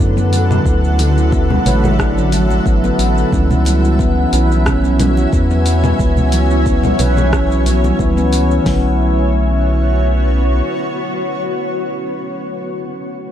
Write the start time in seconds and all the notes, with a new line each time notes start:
Already playing: D3 F#3 A3 C#4 E4 A4 C#5 E5 F#5
0.00 F#2 B3, shaker
0.17 B3, high conga, shaker
0.33 open hi-hat, muted conga, shaker
0.51 low conga, shaker
0.65 D2 D3 F#3 A3 B3 C#4 E4, kick, shaker
0.84 shaker
0.99 F#3, open hi-hat, muted conga, shaker
1.17 D3 F#3 A3 C#4 E4, shaker
1.32 B3, kick, shaker
1.50 low conga
1.65 A1 D3 F#3 A3 E4 B4 C#5, open hi-hat, low conga, shaker
1.84 high conga, low conga, shaker
1.99 D4, kick, cross-stick, shaker
2.18 F#3, shaker
2.32 F#3, open hi-hat, high conga, shaker
2.51 muted conga, high conga, shaker
2.66 A1 B3, kick, shaker
2.84 B3, muted conga, high conga, shaker
2.98 A1, open hi-hat, muted conga, shaker
3.18 shaker
3.31 C#2 E3 G3 B3 C#4 E4, kick, shaker
3.51 low conga, shaker
3.65 F#3, open hi-hat, muted conga, shaker
3.83 E3 B3 C#4 E4, shaker
3.99 B3, kick, shaker
4.20 G#5
4.31 B1 E3 B3 C#4 E4 B4, open hi-hat, shaker
4.50 high conga, shaker
4.65 C#4 C#5, kick, cross-stick, low conga, shaker
4.84 F#3, shaker
4.99 F#3, open hi-hat, low conga, shaker
5.17 muted conga, shaker
5.33 E2 B3, kick, shaker
5.51 B3, high conga, shaker
5.66 open hi-hat, muted conga, shaker
5.84 low conga, shaker
5.99 C#2 E3 B3 C#4 E4, kick, shaker
6.17 low conga, shaker
6.32 F#3, open hi-hat, muted conga, shaker
6.50 E3 B3 C#4 E4, shaker
6.66 B3, kick, shaker
6.83 low conga, shaker
6.97 B1 E3 B3 C#4 B4, open hi-hat, low conga, shaker
7.02 E4
7.17 high conga, low conga, shaker
7.33 C#4, kick, cross-stick, shaker
7.50 F#3, shaker
7.66 F#3, open hi-hat, high conga, shaker
7.83 E3 G3 B3 C#4 E4, muted conga, high conga, shaker
7.99 C#2 E3 B3 C#4 E4, kick, shaker
8.17 B3, muted conga, high conga, shaker
8.33 open hi-hat, muted conga, shaker
8.51 shaker
8.63 B1 D3 F#3 A3 B3, kick, snare, open hi-hat
8.68 C#4 E4
8.77 F#4
8.87 C#5